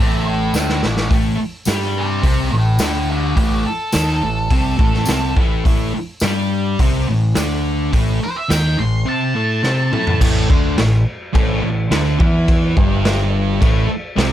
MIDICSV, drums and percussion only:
0, 0, Header, 1, 2, 480
1, 0, Start_track
1, 0, Tempo, 568182
1, 934, Time_signature, 4, 2, 24, 8
1, 12102, End_track
2, 0, Start_track
2, 0, Title_t, "Drums"
2, 455, Note_on_c, 9, 54, 91
2, 466, Note_on_c, 9, 38, 65
2, 540, Note_off_c, 9, 54, 0
2, 550, Note_off_c, 9, 38, 0
2, 584, Note_on_c, 9, 38, 65
2, 668, Note_off_c, 9, 38, 0
2, 700, Note_on_c, 9, 38, 84
2, 785, Note_off_c, 9, 38, 0
2, 819, Note_on_c, 9, 38, 79
2, 904, Note_off_c, 9, 38, 0
2, 935, Note_on_c, 9, 36, 101
2, 942, Note_on_c, 9, 46, 52
2, 1020, Note_off_c, 9, 36, 0
2, 1026, Note_off_c, 9, 46, 0
2, 1397, Note_on_c, 9, 54, 83
2, 1414, Note_on_c, 9, 38, 102
2, 1415, Note_on_c, 9, 46, 56
2, 1481, Note_off_c, 9, 54, 0
2, 1499, Note_off_c, 9, 38, 0
2, 1500, Note_off_c, 9, 46, 0
2, 1531, Note_on_c, 9, 38, 28
2, 1616, Note_off_c, 9, 38, 0
2, 1888, Note_on_c, 9, 36, 112
2, 1891, Note_on_c, 9, 46, 61
2, 1972, Note_off_c, 9, 36, 0
2, 1975, Note_off_c, 9, 46, 0
2, 2354, Note_on_c, 9, 54, 92
2, 2364, Note_on_c, 9, 38, 122
2, 2365, Note_on_c, 9, 46, 63
2, 2438, Note_off_c, 9, 54, 0
2, 2449, Note_off_c, 9, 38, 0
2, 2450, Note_off_c, 9, 46, 0
2, 2846, Note_on_c, 9, 36, 105
2, 2846, Note_on_c, 9, 46, 58
2, 2930, Note_off_c, 9, 36, 0
2, 2930, Note_off_c, 9, 46, 0
2, 3315, Note_on_c, 9, 54, 92
2, 3320, Note_on_c, 9, 38, 108
2, 3321, Note_on_c, 9, 46, 56
2, 3399, Note_off_c, 9, 54, 0
2, 3404, Note_off_c, 9, 38, 0
2, 3405, Note_off_c, 9, 46, 0
2, 3444, Note_on_c, 9, 38, 31
2, 3528, Note_off_c, 9, 38, 0
2, 3804, Note_on_c, 9, 46, 57
2, 3806, Note_on_c, 9, 36, 108
2, 3888, Note_off_c, 9, 46, 0
2, 3890, Note_off_c, 9, 36, 0
2, 4047, Note_on_c, 9, 36, 113
2, 4131, Note_off_c, 9, 36, 0
2, 4174, Note_on_c, 9, 38, 32
2, 4258, Note_off_c, 9, 38, 0
2, 4270, Note_on_c, 9, 54, 98
2, 4297, Note_on_c, 9, 38, 115
2, 4298, Note_on_c, 9, 46, 54
2, 4354, Note_off_c, 9, 54, 0
2, 4382, Note_off_c, 9, 38, 0
2, 4382, Note_off_c, 9, 46, 0
2, 4533, Note_on_c, 9, 36, 106
2, 4618, Note_off_c, 9, 36, 0
2, 4774, Note_on_c, 9, 36, 100
2, 4778, Note_on_c, 9, 46, 48
2, 4859, Note_off_c, 9, 36, 0
2, 4863, Note_off_c, 9, 46, 0
2, 5239, Note_on_c, 9, 54, 79
2, 5250, Note_on_c, 9, 38, 109
2, 5251, Note_on_c, 9, 46, 54
2, 5323, Note_off_c, 9, 54, 0
2, 5335, Note_off_c, 9, 38, 0
2, 5336, Note_off_c, 9, 46, 0
2, 5739, Note_on_c, 9, 36, 115
2, 5741, Note_on_c, 9, 46, 60
2, 5823, Note_off_c, 9, 36, 0
2, 5825, Note_off_c, 9, 46, 0
2, 6213, Note_on_c, 9, 38, 119
2, 6214, Note_on_c, 9, 46, 60
2, 6223, Note_on_c, 9, 54, 95
2, 6298, Note_off_c, 9, 38, 0
2, 6298, Note_off_c, 9, 46, 0
2, 6307, Note_off_c, 9, 54, 0
2, 6702, Note_on_c, 9, 36, 95
2, 6702, Note_on_c, 9, 46, 58
2, 6786, Note_off_c, 9, 36, 0
2, 6787, Note_off_c, 9, 46, 0
2, 7185, Note_on_c, 9, 38, 106
2, 7185, Note_on_c, 9, 46, 53
2, 7192, Note_on_c, 9, 54, 88
2, 7269, Note_off_c, 9, 38, 0
2, 7270, Note_off_c, 9, 46, 0
2, 7277, Note_off_c, 9, 54, 0
2, 8139, Note_on_c, 9, 38, 63
2, 8224, Note_off_c, 9, 38, 0
2, 8388, Note_on_c, 9, 45, 81
2, 8472, Note_off_c, 9, 45, 0
2, 8508, Note_on_c, 9, 43, 84
2, 8593, Note_off_c, 9, 43, 0
2, 8626, Note_on_c, 9, 36, 96
2, 8629, Note_on_c, 9, 49, 116
2, 8629, Note_on_c, 9, 57, 62
2, 8711, Note_off_c, 9, 36, 0
2, 8713, Note_off_c, 9, 49, 0
2, 8713, Note_off_c, 9, 57, 0
2, 8869, Note_on_c, 9, 36, 100
2, 8954, Note_off_c, 9, 36, 0
2, 9107, Note_on_c, 9, 38, 109
2, 9108, Note_on_c, 9, 57, 60
2, 9191, Note_off_c, 9, 38, 0
2, 9192, Note_off_c, 9, 57, 0
2, 9588, Note_on_c, 9, 57, 73
2, 9589, Note_on_c, 9, 36, 107
2, 9673, Note_off_c, 9, 57, 0
2, 9674, Note_off_c, 9, 36, 0
2, 10068, Note_on_c, 9, 38, 116
2, 10069, Note_on_c, 9, 57, 68
2, 10153, Note_off_c, 9, 38, 0
2, 10153, Note_off_c, 9, 57, 0
2, 10307, Note_on_c, 9, 36, 110
2, 10391, Note_off_c, 9, 36, 0
2, 10543, Note_on_c, 9, 57, 62
2, 10546, Note_on_c, 9, 36, 103
2, 10627, Note_off_c, 9, 57, 0
2, 10631, Note_off_c, 9, 36, 0
2, 10787, Note_on_c, 9, 36, 111
2, 10871, Note_off_c, 9, 36, 0
2, 11027, Note_on_c, 9, 38, 113
2, 11028, Note_on_c, 9, 57, 65
2, 11112, Note_off_c, 9, 38, 0
2, 11113, Note_off_c, 9, 57, 0
2, 11505, Note_on_c, 9, 36, 108
2, 11507, Note_on_c, 9, 57, 71
2, 11589, Note_off_c, 9, 36, 0
2, 11591, Note_off_c, 9, 57, 0
2, 11983, Note_on_c, 9, 38, 117
2, 11984, Note_on_c, 9, 57, 66
2, 12068, Note_off_c, 9, 38, 0
2, 12069, Note_off_c, 9, 57, 0
2, 12102, End_track
0, 0, End_of_file